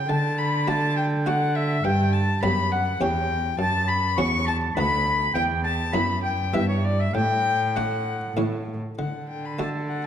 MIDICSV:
0, 0, Header, 1, 5, 480
1, 0, Start_track
1, 0, Key_signature, 2, "major"
1, 0, Tempo, 583658
1, 76, Time_signature, 3, 2, 24, 8
1, 4876, Tempo, 606673
1, 8150, End_track
2, 0, Start_track
2, 0, Title_t, "Oboe"
2, 0, Program_c, 0, 68
2, 72, Note_on_c, 0, 81, 89
2, 181, Note_off_c, 0, 81, 0
2, 320, Note_on_c, 0, 83, 79
2, 563, Note_on_c, 0, 81, 92
2, 576, Note_off_c, 0, 83, 0
2, 792, Note_on_c, 0, 79, 77
2, 805, Note_off_c, 0, 81, 0
2, 1050, Note_on_c, 0, 78, 80
2, 1063, Note_off_c, 0, 79, 0
2, 1286, Note_on_c, 0, 76, 87
2, 1298, Note_off_c, 0, 78, 0
2, 1517, Note_on_c, 0, 79, 99
2, 1529, Note_off_c, 0, 76, 0
2, 1750, Note_off_c, 0, 79, 0
2, 1755, Note_on_c, 0, 81, 79
2, 1988, Note_off_c, 0, 81, 0
2, 1994, Note_on_c, 0, 83, 91
2, 2101, Note_off_c, 0, 83, 0
2, 2234, Note_on_c, 0, 78, 83
2, 2341, Note_off_c, 0, 78, 0
2, 2473, Note_on_c, 0, 79, 72
2, 2778, Note_off_c, 0, 79, 0
2, 2955, Note_on_c, 0, 81, 107
2, 3176, Note_off_c, 0, 81, 0
2, 3188, Note_on_c, 0, 83, 87
2, 3297, Note_off_c, 0, 83, 0
2, 3427, Note_on_c, 0, 85, 101
2, 3664, Note_on_c, 0, 81, 91
2, 3676, Note_off_c, 0, 85, 0
2, 3900, Note_off_c, 0, 81, 0
2, 3905, Note_on_c, 0, 83, 98
2, 4383, Note_off_c, 0, 83, 0
2, 4388, Note_on_c, 0, 79, 110
2, 4628, Note_off_c, 0, 79, 0
2, 4637, Note_on_c, 0, 81, 78
2, 4745, Note_off_c, 0, 81, 0
2, 4872, Note_on_c, 0, 83, 90
2, 4979, Note_off_c, 0, 83, 0
2, 5116, Note_on_c, 0, 79, 74
2, 5222, Note_off_c, 0, 79, 0
2, 5355, Note_on_c, 0, 76, 82
2, 5408, Note_off_c, 0, 76, 0
2, 5472, Note_on_c, 0, 73, 75
2, 5590, Note_off_c, 0, 73, 0
2, 5597, Note_on_c, 0, 74, 67
2, 5720, Note_on_c, 0, 76, 85
2, 5731, Note_off_c, 0, 74, 0
2, 5835, Note_on_c, 0, 79, 108
2, 5847, Note_off_c, 0, 76, 0
2, 6314, Note_off_c, 0, 79, 0
2, 6319, Note_on_c, 0, 78, 74
2, 6795, Note_off_c, 0, 78, 0
2, 7769, Note_on_c, 0, 69, 52
2, 8150, Note_off_c, 0, 69, 0
2, 8150, End_track
3, 0, Start_track
3, 0, Title_t, "Violin"
3, 0, Program_c, 1, 40
3, 0, Note_on_c, 1, 79, 98
3, 71, Note_on_c, 1, 81, 106
3, 83, Note_off_c, 1, 79, 0
3, 311, Note_on_c, 1, 83, 96
3, 324, Note_off_c, 1, 81, 0
3, 552, Note_on_c, 1, 81, 100
3, 564, Note_off_c, 1, 83, 0
3, 792, Note_off_c, 1, 81, 0
3, 797, Note_on_c, 1, 79, 88
3, 863, Note_off_c, 1, 79, 0
3, 1026, Note_on_c, 1, 78, 97
3, 1275, Note_on_c, 1, 76, 101
3, 1288, Note_off_c, 1, 78, 0
3, 1512, Note_on_c, 1, 79, 110
3, 1525, Note_off_c, 1, 76, 0
3, 1750, Note_on_c, 1, 81, 103
3, 1763, Note_off_c, 1, 79, 0
3, 1991, Note_off_c, 1, 81, 0
3, 1996, Note_on_c, 1, 83, 110
3, 2235, Note_on_c, 1, 78, 100
3, 2247, Note_off_c, 1, 83, 0
3, 2470, Note_on_c, 1, 79, 103
3, 2482, Note_off_c, 1, 78, 0
3, 2949, Note_off_c, 1, 79, 0
3, 2954, Note_on_c, 1, 81, 112
3, 3194, Note_on_c, 1, 83, 109
3, 3206, Note_off_c, 1, 81, 0
3, 3438, Note_on_c, 1, 85, 119
3, 3450, Note_off_c, 1, 83, 0
3, 3675, Note_off_c, 1, 85, 0
3, 3680, Note_on_c, 1, 81, 96
3, 3746, Note_off_c, 1, 81, 0
3, 3918, Note_on_c, 1, 83, 110
3, 4390, Note_off_c, 1, 83, 0
3, 4397, Note_on_c, 1, 79, 115
3, 4463, Note_off_c, 1, 79, 0
3, 4641, Note_on_c, 1, 81, 102
3, 4880, Note_on_c, 1, 83, 100
3, 4892, Note_off_c, 1, 81, 0
3, 5112, Note_off_c, 1, 83, 0
3, 5117, Note_on_c, 1, 79, 93
3, 5361, Note_on_c, 1, 76, 105
3, 5372, Note_off_c, 1, 79, 0
3, 5476, Note_off_c, 1, 76, 0
3, 5479, Note_on_c, 1, 73, 77
3, 5599, Note_on_c, 1, 74, 88
3, 5610, Note_off_c, 1, 73, 0
3, 5728, Note_on_c, 1, 76, 101
3, 5740, Note_off_c, 1, 74, 0
3, 5839, Note_off_c, 1, 76, 0
3, 5844, Note_on_c, 1, 79, 119
3, 6320, Note_on_c, 1, 78, 94
3, 6332, Note_off_c, 1, 79, 0
3, 6805, Note_off_c, 1, 78, 0
3, 7294, Note_on_c, 1, 78, 66
3, 7514, Note_off_c, 1, 78, 0
3, 7534, Note_on_c, 1, 79, 72
3, 7662, Note_on_c, 1, 83, 67
3, 7673, Note_off_c, 1, 79, 0
3, 7774, Note_off_c, 1, 83, 0
3, 7779, Note_on_c, 1, 81, 73
3, 7842, Note_off_c, 1, 81, 0
3, 8004, Note_on_c, 1, 78, 68
3, 8138, Note_off_c, 1, 78, 0
3, 8150, End_track
4, 0, Start_track
4, 0, Title_t, "Harpsichord"
4, 0, Program_c, 2, 6
4, 78, Note_on_c, 2, 50, 62
4, 555, Note_on_c, 2, 57, 52
4, 557, Note_on_c, 2, 66, 53
4, 560, Note_on_c, 2, 74, 56
4, 901, Note_off_c, 2, 57, 0
4, 903, Note_off_c, 2, 66, 0
4, 905, Note_off_c, 2, 74, 0
4, 1039, Note_on_c, 2, 57, 50
4, 1044, Note_on_c, 2, 66, 51
4, 1047, Note_on_c, 2, 74, 53
4, 1384, Note_off_c, 2, 57, 0
4, 1386, Note_off_c, 2, 66, 0
4, 1389, Note_off_c, 2, 74, 0
4, 1484, Note_off_c, 2, 50, 0
4, 1520, Note_on_c, 2, 43, 64
4, 1962, Note_off_c, 2, 43, 0
4, 1996, Note_on_c, 2, 59, 59
4, 1998, Note_on_c, 2, 42, 64
4, 2000, Note_on_c, 2, 67, 53
4, 2003, Note_on_c, 2, 74, 56
4, 2339, Note_off_c, 2, 59, 0
4, 2341, Note_off_c, 2, 67, 0
4, 2343, Note_off_c, 2, 74, 0
4, 2441, Note_off_c, 2, 42, 0
4, 2474, Note_on_c, 2, 40, 62
4, 2474, Note_on_c, 2, 61, 53
4, 2478, Note_on_c, 2, 67, 52
4, 2483, Note_on_c, 2, 73, 55
4, 2920, Note_off_c, 2, 40, 0
4, 2920, Note_off_c, 2, 61, 0
4, 2922, Note_off_c, 2, 67, 0
4, 2925, Note_off_c, 2, 73, 0
4, 2950, Note_on_c, 2, 42, 61
4, 3398, Note_off_c, 2, 42, 0
4, 3437, Note_on_c, 2, 61, 56
4, 3438, Note_on_c, 2, 40, 71
4, 3441, Note_on_c, 2, 66, 59
4, 3444, Note_on_c, 2, 73, 56
4, 3784, Note_off_c, 2, 61, 0
4, 3786, Note_off_c, 2, 66, 0
4, 3788, Note_off_c, 2, 73, 0
4, 3886, Note_off_c, 2, 40, 0
4, 3923, Note_on_c, 2, 38, 64
4, 3923, Note_on_c, 2, 62, 54
4, 3926, Note_on_c, 2, 66, 52
4, 3934, Note_on_c, 2, 71, 58
4, 4369, Note_off_c, 2, 38, 0
4, 4369, Note_off_c, 2, 62, 0
4, 4371, Note_off_c, 2, 66, 0
4, 4375, Note_off_c, 2, 71, 0
4, 4405, Note_on_c, 2, 40, 68
4, 4849, Note_off_c, 2, 40, 0
4, 4881, Note_on_c, 2, 42, 64
4, 4883, Note_on_c, 2, 59, 59
4, 4886, Note_on_c, 2, 64, 49
4, 4889, Note_on_c, 2, 71, 57
4, 5222, Note_off_c, 2, 59, 0
4, 5224, Note_off_c, 2, 64, 0
4, 5226, Note_off_c, 2, 71, 0
4, 5321, Note_off_c, 2, 42, 0
4, 5357, Note_on_c, 2, 43, 60
4, 5357, Note_on_c, 2, 59, 51
4, 5361, Note_on_c, 2, 64, 48
4, 5366, Note_on_c, 2, 71, 47
4, 5806, Note_off_c, 2, 43, 0
4, 5806, Note_off_c, 2, 59, 0
4, 5808, Note_off_c, 2, 64, 0
4, 5811, Note_off_c, 2, 71, 0
4, 5840, Note_on_c, 2, 45, 59
4, 6328, Note_on_c, 2, 57, 50
4, 6331, Note_on_c, 2, 62, 51
4, 6333, Note_on_c, 2, 74, 55
4, 6675, Note_off_c, 2, 57, 0
4, 6676, Note_off_c, 2, 62, 0
4, 6678, Note_off_c, 2, 74, 0
4, 6776, Note_off_c, 2, 45, 0
4, 6806, Note_on_c, 2, 45, 58
4, 6806, Note_on_c, 2, 57, 46
4, 6812, Note_on_c, 2, 64, 50
4, 6816, Note_on_c, 2, 73, 47
4, 7097, Note_off_c, 2, 45, 0
4, 7259, Note_off_c, 2, 57, 0
4, 7262, Note_off_c, 2, 64, 0
4, 7264, Note_off_c, 2, 73, 0
4, 7296, Note_on_c, 2, 50, 47
4, 7770, Note_on_c, 2, 57, 35
4, 7774, Note_on_c, 2, 66, 37
4, 7775, Note_on_c, 2, 74, 40
4, 8108, Note_off_c, 2, 57, 0
4, 8110, Note_off_c, 2, 66, 0
4, 8111, Note_off_c, 2, 74, 0
4, 8150, Note_off_c, 2, 50, 0
4, 8150, End_track
5, 0, Start_track
5, 0, Title_t, "Cello"
5, 0, Program_c, 3, 42
5, 77, Note_on_c, 3, 50, 81
5, 1488, Note_off_c, 3, 50, 0
5, 1517, Note_on_c, 3, 43, 90
5, 1961, Note_off_c, 3, 43, 0
5, 1996, Note_on_c, 3, 42, 80
5, 2463, Note_off_c, 3, 42, 0
5, 2477, Note_on_c, 3, 40, 76
5, 2945, Note_off_c, 3, 40, 0
5, 2954, Note_on_c, 3, 42, 86
5, 3433, Note_on_c, 3, 40, 80
5, 3446, Note_off_c, 3, 42, 0
5, 3912, Note_off_c, 3, 40, 0
5, 3917, Note_on_c, 3, 38, 85
5, 4389, Note_off_c, 3, 38, 0
5, 4398, Note_on_c, 3, 40, 87
5, 4881, Note_on_c, 3, 42, 74
5, 4892, Note_off_c, 3, 40, 0
5, 5352, Note_on_c, 3, 43, 88
5, 5364, Note_off_c, 3, 42, 0
5, 5828, Note_off_c, 3, 43, 0
5, 5833, Note_on_c, 3, 45, 84
5, 6785, Note_off_c, 3, 45, 0
5, 6804, Note_on_c, 3, 45, 73
5, 7121, Note_off_c, 3, 45, 0
5, 7292, Note_on_c, 3, 50, 57
5, 8150, Note_off_c, 3, 50, 0
5, 8150, End_track
0, 0, End_of_file